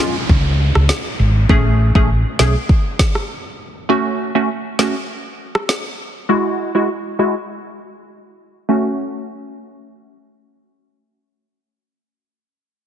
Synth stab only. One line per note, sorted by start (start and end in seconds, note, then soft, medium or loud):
0.00 0.15 G#3 medium
0.00 0.15 C#4 medium
0.00 0.15 F4 medium
1.49 1.91 A3 medium
1.49 1.92 C#4 medium
1.49 1.92 G#4 loud
1.95 2.09 A3 medium
1.95 2.09 C#4 medium
1.95 2.09 G#4 medium
2.39 2.55 A3 medium
2.39 2.55 C#4 medium
2.39 2.55 G#4 medium
3.89 4.31 A3 medium
3.89 4.31 C#4 medium
3.89 4.32 F#4 loud
4.35 4.49 A3 medium
4.35 4.49 C#4 medium
4.35 4.49 F#4 medium
4.79 4.95 A3 medium
4.79 4.95 C#4 medium
4.79 4.95 F#4 medium
6.29 6.71 G#3 medium
6.29 6.71 E4 medium
6.29 6.72 F#4 loud
6.75 6.89 G#3 medium
6.75 6.89 E4 medium
6.75 6.89 F#4 medium
7.19 7.35 G#3 medium
7.19 7.35 E4 medium
7.19 7.35 F#4 medium
8.69 12.15 A3 medium
8.69 12.15 C#4 medium
8.69 12.16 F#4 medium